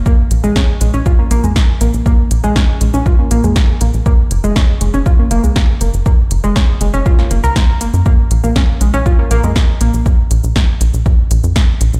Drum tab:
HH |--x---x---x---x-|--x---x---x-x-x-|--x---x---x---x-|--x---x---x-x-x-|
SH |x-xxx-xxx-xxx-xx|x-xxx-xxx-xxx-xx|x-xxx-xxx-xxx-xx|x-xxx-xxx-xxx-xx|
SD |----o-------o---|----o-------o---|----o-------o---|----o----o--o---|
BD |o---o---o---o---|o---o---o---o---|o---o---o---o---|o---o---o---o---|

HH |--x---x---x---x-|--x---x---x-x-x-|
SH |x-xxx-xxx-xxx-xx|x-xxx-xxx-xxx-xx|
SD |----o-------o---|----o-------o---|
BD |o---o---o---o---|o---o---o---o---|